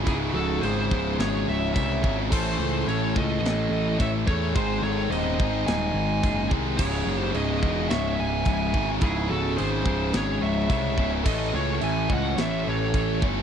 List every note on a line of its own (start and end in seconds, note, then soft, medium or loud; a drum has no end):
0.04 0.33 C#1 loud
0.04 0.89 C#2 medium
0.04 0.90 G#2 loud
0.04 0.12 E4 medium
0.04 0.15 G#4 loud
0.04 kick loud
0.04 china medium
0.08 0.90 C#3 medium
0.08 0.90 G#3 loud
0.08 0.90 E4 loud
0.33 0.61 C#1 loud
0.33 0.61 F#4 medium
0.33 0.64 A4 medium
0.61 0.90 G#1 medium
0.61 1.16 G#4 medium
0.61 1.14 C5 loud
0.61 china medium
0.90 1.18 C#1 loud
0.90 1.72 C#2 medium
0.90 1.73 G#2 medium
0.90 1.74 C#3 loud
0.90 1.74 G#3 medium
0.90 1.73 E4 medium
0.90 kick medium
1.19 1.46 G#1 loud
1.19 1.45 G#4 medium
1.19 1.46 C#5 loud
1.19 snare loud
1.19 china medium
1.48 1.74 C#1 medium
1.48 1.75 C#5 medium
1.48 1.73 E5 loud
1.73 2.02 C2 medium
1.73 2.29 C#2 loud
1.73 2.29 G#2 medium
1.73 2.30 C#3 medium
1.73 2.30 G#3 medium
1.73 2.30 E4 medium
1.73 2.14 E5 loud
1.73 kick loud
1.73 china medium
1.80 2.17 C#5 medium
2.03 2.31 G#1 loud
2.03 2.30 C#2 medium
2.03 2.30 G#2 medium
2.03 2.29 C#3 loud
2.03 kick loud
2.29 2.58 A1 loud
2.29 3.13 A2 loud
2.29 3.13 E3 medium
2.29 3.13 A3 loud
2.29 3.14 C#4 loud
2.29 3.14 E4 loud
2.29 2.83 A4 medium
2.29 3.13 A4 loud
2.29 2.84 C5 loud
2.29 kick loud
2.29 crash loud
2.29 china medium
2.59 2.86 C#2 loud
2.87 3.14 A1 medium
2.87 3.13 A4 medium
2.87 3.14 C#5 loud
2.87 china medium
3.14 3.40 C#2 loud
3.14 3.96 A2 medium
3.14 3.97 E3 medium
3.14 3.98 A3 medium
3.14 3.98 C#4 medium
3.14 3.97 E4 medium
3.14 3.97 A4 medium
3.14 3.95 A4 medium
3.14 3.96 D#5 loud
3.14 kick loud
3.41 3.69 A1 loud
3.45 snare loud
3.45 china medium
3.70 3.97 A1 loud
3.98 4.26 A1 medium
3.98 4.53 A2 medium
3.98 4.53 E3 medium
3.98 4.53 A3 medium
3.98 4.53 C#4 loud
3.98 4.54 E4 medium
3.98 4.54 A4 medium
3.98 4.07 C#5 medium
3.98 4.09 E5 loud
3.98 kick loud
3.98 china medium
4.27 4.54 E2 medium
4.27 4.54 A2 medium
4.27 4.54 E3 medium
4.27 4.53 A3 loud
4.27 4.53 A4 medium
4.27 4.53 C#5 medium
4.27 kick medium
4.53 4.82 G#1 loud
4.53 5.36 G#2 loud
4.53 5.37 D#3 loud
4.53 5.39 G#3 loud
4.53 5.37 C4 loud
4.53 5.38 D#4 medium
4.53 4.81 G#4 medium
4.53 5.38 G#4 loud
4.53 4.83 C5 medium
4.53 kick loud
4.53 china medium
4.82 5.09 G#1 loud
4.82 5.09 A4 medium
4.82 5.11 C#5 medium
5.10 5.37 D#1 loud
5.10 5.63 C5 medium
5.10 5.63 D#5 loud
5.10 china medium
5.38 5.66 G#1 loud
5.38 6.21 G#2 medium
5.38 6.22 D#3 medium
5.38 6.24 G#3 medium
5.38 6.21 C4 medium
5.38 6.21 D#4 medium
5.38 6.25 G#4 medium
5.38 kick loud
5.67 5.94 D#1 loud
5.67 6.47 D#5 medium
5.67 6.47 G#5 medium
5.67 snare loud
5.67 china medium
5.94 6.21 G#1 loud
6.22 6.50 F#1 medium
6.22 6.77 G#2 medium
6.22 6.78 D#3 medium
6.22 6.81 G#3 medium
6.22 6.78 C4 medium
6.22 6.78 D#4 medium
6.22 6.82 G#4 medium
6.22 kick loud
6.22 china medium
6.51 6.78 C2 loud
6.51 6.78 G#2 medium
6.51 6.78 D#3 medium
6.51 6.81 G#3 loud
6.51 kick medium
6.77 7.05 C#1 loud
6.77 7.65 C#2 loud
6.77 7.61 G#2 loud
6.77 7.64 C#3 medium
6.77 7.17 G#4 medium
6.77 7.19 C#5 loud
6.77 kick loud
6.77 china medium
6.77 crash loud
6.82 7.63 G#3 loud
6.82 7.62 E4 loud
7.05 7.33 F#1 loud
7.17 7.31 G4 medium
7.17 7.36 C5 loud
7.34 7.62 C#1 medium
7.34 7.86 G#4 medium
7.34 7.89 D#5 loud
7.34 china medium
7.62 7.90 E1 medium
7.62 8.45 C#2 medium
7.62 8.46 G#2 medium
7.62 8.46 C#3 medium
7.62 8.45 G#3 loud
7.62 8.49 E4 medium
7.62 kick loud
7.89 8.18 C#1 loud
7.89 8.16 C#5 medium
7.89 8.19 E5 loud
7.89 snare loud
7.89 china medium
8.17 8.45 C#1 medium
8.17 8.44 E5 medium
8.17 8.48 G#5 loud
8.45 8.73 C#1 loud
8.45 9.01 C#2 medium
8.45 9.01 G#2 medium
8.45 9.01 C#3 loud
8.45 9.02 G#3 medium
8.45 8.85 E5 loud
8.45 kick loud
8.45 china medium
8.49 9.04 E4 loud
8.49 8.87 G#5 loud
8.73 9.01 G#1 medium
8.73 8.99 C#2 medium
8.73 9.00 G#2 medium
8.73 9.00 C#3 loud
8.73 kick medium
9.01 9.29 C#1 loud
9.01 9.84 C#2 loud
9.01 9.85 G#2 medium
9.01 9.85 C#3 loud
9.01 9.84 G#3 loud
9.01 9.28 E4 medium
9.01 9.85 E4 loud
9.01 9.30 G#4 loud
9.01 kick loud
9.01 china medium
9.30 9.58 C#1 loud
9.30 9.57 F#4 medium
9.30 9.56 A4 loud
9.57 9.85 G#1 loud
9.57 10.10 G#4 medium
9.57 10.16 C5 loud
9.57 china medium
9.85 10.13 C#1 loud
9.85 10.67 C#2 medium
9.85 10.68 G#2 medium
9.85 10.69 C#3 medium
9.85 10.68 G#3 medium
9.85 10.68 E4 medium
9.85 kick loud
10.13 10.41 G#1 loud
10.13 10.40 G#4 medium
10.13 10.43 C#5 loud
10.13 snare loud
10.13 china medium
10.41 10.69 C#1 medium
10.41 10.68 C#5 medium
10.41 10.69 E5 loud
10.68 10.97 C2 loud
10.68 11.24 C#2 medium
10.68 11.24 G#2 medium
10.68 11.24 C#3 loud
10.68 11.24 G#3 medium
10.68 11.25 E4 medium
10.68 11.09 C#5 loud
10.68 11.10 E5 loud
10.68 kick loud
10.68 china medium
10.97 11.25 C#1 medium
10.97 11.23 C#2 medium
10.97 11.25 G#2 medium
10.97 11.24 C#3 loud
10.97 kick medium
11.24 11.53 A1 loud
11.24 12.08 A2 loud
11.24 12.08 E3 loud
11.24 12.09 A3 loud
11.24 12.09 C#4 loud
11.24 12.09 E4 loud
11.24 11.51 A4 medium
11.24 12.08 A4 loud
11.24 11.52 D#5 loud
11.24 kick loud
11.24 china medium
11.24 crash loud
11.54 11.81 C#2 loud
11.54 11.80 A4 medium
11.54 11.81 C#5 medium
11.81 12.09 A1 medium
11.81 12.07 E5 medium
11.81 12.12 G#5 loud
11.81 china medium
12.10 12.37 C#2 medium
12.10 12.92 A2 medium
12.10 12.93 E3 medium
12.10 12.93 A3 medium
12.10 12.93 C#4 medium
12.10 12.92 E4 loud
12.10 12.92 A4 medium
12.10 12.35 D#5 medium
12.10 12.38 F#5 loud
12.10 kick medium
12.36 12.65 A1 loud
12.36 12.63 C#5 medium
12.36 snare loud
12.36 china medium
12.41 12.65 E5 loud
12.63 12.93 A1 loud
12.63 13.17 A4 medium
12.69 13.20 C#5 medium
12.94 13.21 A1 medium
12.94 13.42 A2 medium
12.94 13.42 E3 medium
12.94 13.42 A3 medium
12.94 13.42 C#4 medium
12.94 13.42 E4 medium
12.94 13.42 A4 loud
12.94 kick medium
12.94 china medium
13.20 13.42 G1 loud
13.20 13.42 A2 medium
13.20 13.42 E3 medium
13.20 13.42 A3 loud
13.20 kick medium